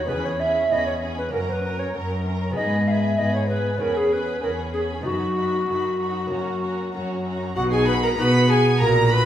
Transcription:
0.05 1.27 B3 soft
0.05 1.28 C#4 soft
0.05 1.29 G#4 soft
0.05 0.27 B4 medium
0.05 0.39 B5 medium
0.10 0.64 E2 medium
0.10 0.61 E2 soft
0.10 0.40 C#4 medium
0.10 0.39 G#4 soft
0.25 0.41 C#5 medium
0.40 0.70 C#4 soft
0.40 0.70 G#4 soft
0.40 0.73 E5 medium
0.40 0.71 B5 soft
0.70 1.22 E2 soft
0.70 1.26 E2 soft
0.70 1.01 C#4 soft
0.70 1.00 G#4 soft
0.70 0.86 D#5 medium
0.70 1.01 B5 soft
0.86 0.93 C#5 medium
1.02 1.32 C#4 soft
1.02 1.32 G#4 soft
1.02 1.33 B5 soft
1.18 1.32 B4 medium
1.29 2.50 A#3 soft
1.29 2.51 C#4 soft
1.29 2.52 A#4 soft
1.29 1.63 A#4 soft
1.33 1.87 F#2 medium
1.33 1.85 F#2 soft
1.33 1.63 C#4 soft
1.33 1.39 A#4 medium
1.33 1.62 A#5 medium
1.48 1.54 C5 medium
1.53 1.81 B4 medium
1.64 1.95 C#4 soft
1.64 1.92 A#4 soft
1.64 1.94 A#5 soft
1.79 1.95 C#5 medium
1.94 2.47 F#2 soft
1.94 2.50 F#2 medium
1.94 2.25 C#4 soft
1.94 2.24 A#4 soft
1.94 2.25 A#5 soft
2.25 2.57 C#4 soft
2.25 2.56 A#4 soft
2.25 2.56 A#5 soft
2.50 3.73 G#3 soft
2.50 3.74 B3 soft
2.50 3.75 G#4 soft
2.55 3.08 G#2 soft
2.55 3.11 G#2 medium
2.55 2.87 B3 soft
2.55 2.85 G#4 soft
2.55 2.89 D#5 medium
2.55 2.86 B5 soft
2.87 3.18 B3 soft
2.87 3.17 G#4 soft
2.87 2.92 F5 medium
2.87 3.18 B5 soft
2.91 3.20 E5 medium
3.18 3.70 G#2 soft
3.18 3.73 G#2 medium
3.18 3.48 B3 soft
3.18 3.48 G#4 soft
3.18 3.34 D#5 medium
3.18 3.48 B5 soft
3.35 3.48 C#5 medium
3.49 3.80 B3 soft
3.49 3.79 G#4 soft
3.49 3.83 B4 medium
3.49 3.79 B5 soft
3.76 5.00 B3 soft
3.76 5.01 C#4 soft
3.76 5.01 G#4 soft
3.76 4.10 G#4 soft
3.76 4.10 B5 soft
3.80 4.33 E2 soft
3.80 4.35 E2 soft
3.80 4.11 C#4 soft
3.80 3.98 A#4 medium
3.97 4.14 G#4 medium
4.11 4.42 C#4 soft
4.11 4.40 G#4 soft
4.11 4.42 B4 medium
4.11 4.41 B5 soft
4.41 4.98 E2 soft
4.41 4.96 E2 soft
4.41 4.72 C#4 soft
4.41 4.72 G#4 soft
4.41 4.50 A#4 medium
4.41 4.72 B5 soft
4.73 5.05 C#4 soft
4.73 5.05 G#4 soft
4.73 4.81 G#4 medium
4.73 5.03 B5 soft
5.01 5.61 F#2 medium
5.01 6.25 B3 soft
5.01 6.26 D#4 soft
5.01 5.36 D#4 soft
5.01 6.27 F#4 soft
5.01 5.36 F#4 soft
5.01 6.90 F#4 medium
5.01 5.35 B5 soft
5.06 5.58 F#2 soft
5.36 5.68 D#4 soft
5.36 5.67 F#4 soft
5.36 5.67 B5 soft
5.68 6.24 F#2 soft
5.68 6.21 F#2 soft
5.68 5.99 D#4 soft
5.68 5.99 F#4 soft
5.68 5.99 B5 soft
6.00 6.31 D#4 soft
6.00 6.29 F#4 soft
6.00 6.31 B5 soft
6.27 6.86 F#2 medium
6.27 7.50 A#3 soft
6.27 7.51 C#4 soft
6.27 7.52 F#4 soft
6.27 6.61 F#4 soft
6.27 6.61 A#5 soft
6.31 6.84 F#2 soft
6.31 6.62 C#4 soft
6.62 6.93 C#4 soft
6.62 6.92 F#4 soft
6.62 6.93 A#5 soft
6.94 7.49 F#2 medium
6.94 7.47 F#2 soft
6.94 7.24 C#4 soft
6.94 7.24 F#4 soft
6.94 7.24 A#5 soft
7.25 7.56 C#4 soft
7.25 7.56 F#4 soft
7.25 7.56 A#5 soft
7.55 8.15 B1 medium
7.55 8.15 B2 medium
7.55 8.15 D#4 medium
7.55 7.71 F#4 medium
7.55 7.62 F#5 loud
7.55 7.63 F#5 medium
7.72 7.87 G#4 medium
7.72 7.87 G#5 medium
7.87 7.93 B4 medium
7.87 8.03 B5 medium
8.03 8.09 A#4 medium
8.03 8.10 A#5 medium
8.03 8.19 A#5 medium
8.18 8.79 B2 medium
8.18 8.79 B3 medium
8.18 8.76 B3 medium
8.18 8.76 D#4 soft
8.18 8.76 F#4 medium
8.18 8.80 G#4 medium
8.18 8.48 B4 medium
8.18 8.50 B5 loud
8.18 8.49 B5 medium
8.49 8.80 G#4 medium
8.49 8.80 G#5 loud
8.49 8.81 G#5 medium
8.80 9.25 A#1 medium
8.80 9.25 A#2 medium
8.80 9.25 F#4 medium
8.80 9.13 A#4 medium
8.80 9.11 A#5 medium
9.10 9.25 B4 medium
9.10 9.25 B5 loud
9.10 9.25 B5 medium

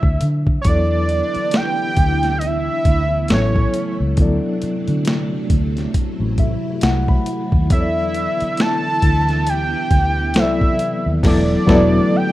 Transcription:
0.00 0.18 D2 medium
0.00 0.61 B2 soft
0.00 0.61 F#3 medium
0.00 0.62 E4 medium
0.00 0.62 A4 soft
0.00 0.63 C5 medium
0.00 0.22 E5 loud
0.00 kick medium
0.21 0.57 D3 medium
0.21 closed hi-hat medium
0.47 kick medium
0.61 1.21 E2 medium
0.61 4.14 E3 medium
0.61 3.27 E4 medium
0.61 0.68 C#5 medium
0.61 kick medium
0.61 closed hi-hat medium
0.66 3.27 D3 medium
0.66 3.26 F#3 medium
0.66 3.27 B3 medium
0.66 3.26 B3 medium
0.66 3.27 E4 medium
0.66 3.28 A4 medium
0.66 1.58 D5 medium
0.70 3.28 D5 medium
1.09 closed hi-hat soft
1.35 muted fingered electric bass stroke soft
1.35 closed hi-hat soft
1.51 finger snap medium
1.51 snare loud
1.51 closed hi-hat medium
1.56 2.40 G5 loud
1.97 2.68 D2 medium
1.97 kick medium
1.97 closed hi-hat medium
2.23 snare soft
2.23 closed hi-hat soft
2.38 2.48 D#5 medium
2.38 closed hi-hat medium
2.46 3.32 E5 loud
2.85 3.32 D2 medium
2.85 kick medium
2.85 closed hi-hat medium
3.28 3.65 A1 loud
3.28 4.17 C#3 medium
3.28 4.18 F#3 medium
3.28 4.16 A3 medium
3.28 4.18 B3 medium
3.28 4.17 E4 medium
3.28 4.19 E4 medium
3.28 4.19 A4 medium
3.28 finger snap medium
3.28 snare loud
3.28 closed hi-hat medium
3.33 4.19 C#5 medium
3.33 3.97 C#5 medium
3.56 kick medium
3.74 closed hi-hat medium
4.00 4.15 C#2 medium
4.17 4.38 D2 medium
4.17 7.67 C3 medium
4.17 4.26 F3 medium
4.17 7.67 F#3 medium
4.17 7.67 A3 medium
4.17 7.67 B3 medium
4.17 5.92 D4 medium
4.17 7.68 E4 medium
4.17 kick loud
4.17 closed hi-hat medium
4.21 7.69 F#3 medium
4.21 7.68 A4 medium
4.21 7.69 D5 medium
4.62 muted fingered electric bass stroke soft
4.62 closed hi-hat soft
4.88 5.38 D3 medium
4.88 closed hi-hat soft
5.05 finger snap medium
5.05 snare loud
5.05 closed hi-hat medium
5.50 5.86 D2 medium
5.50 kick medium
5.50 closed hi-hat medium
5.77 snare soft
5.77 closed hi-hat soft
5.94 7.69 E4 medium
5.94 muted fingered electric bass stroke soft
5.94 kick medium
5.94 closed hi-hat medium
6.20 6.55 A1 medium
6.38 6.80 E5 medium
6.38 kick medium
6.38 closed hi-hat soft
6.81 7.18 C2 medium
6.81 7.07 F#5 medium
6.81 finger snap medium
6.81 snare loud
6.81 closed hi-hat medium
7.08 7.67 B5 medium
7.08 kick medium
7.26 closed hi-hat medium
7.52 7.71 D#2 medium
7.52 kick medium
7.70 8.26 E2 loud
7.70 10.32 D3 medium
7.70 10.33 E3 medium
7.70 10.31 F#3 medium
7.70 11.20 B3 medium
7.70 10.32 B3 medium
7.70 11.20 E4 medium
7.70 10.32 E4 medium
7.70 10.33 A4 medium
7.70 8.62 E5 loud
7.70 kick loud
7.70 closed hi-hat medium
7.74 7.80 C#5 soft
7.81 10.36 D5 medium
8.14 closed hi-hat medium
8.40 muted fingered electric bass stroke soft
8.40 closed hi-hat soft
8.57 9.51 A5 loud
8.57 finger snap medium
8.57 snare loud
8.57 closed hi-hat medium
9.02 9.74 D2 medium
9.02 kick medium
9.02 closed hi-hat medium
9.29 snare soft
9.29 closed hi-hat soft
9.47 10.40 G5 loud
9.47 closed hi-hat medium
9.91 10.36 D2 medium
9.91 kick medium
9.91 closed hi-hat medium
10.34 10.71 C2 medium
10.34 11.22 C3 medium
10.34 12.32 E3 medium
10.34 11.22 F#3 medium
10.34 11.22 B3 medium
10.34 11.23 E4 medium
10.34 11.24 A4 medium
10.34 10.44 C5 medium
10.34 finger snap medium
10.34 snare loud
10.34 closed hi-hat medium
10.39 11.07 E5 medium
10.44 11.26 D5 medium
10.61 kick medium
10.79 closed hi-hat medium
11.06 11.20 D#2 medium
11.22 11.55 E1 loud
11.22 12.32 D3 medium
11.22 12.32 F#3 medium
11.22 11.54 F#3 medium
11.22 12.32 A3 medium
11.22 11.55 B3 medium
11.22 11.55 E4 medium
11.22 11.56 A4 medium
11.22 kick loud
11.22 snare medium
11.22 crash medium
11.27 11.57 D5 medium
11.27 12.18 D5 medium
11.67 11.99 E1 loud
11.67 11.98 F#3 medium
11.67 11.99 B3 loud
11.67 11.99 E4 medium
11.67 12.00 A4 loud
11.67 kick medium
11.67 snare loud
11.71 12.01 D5 medium
12.16 12.32 G5 loud

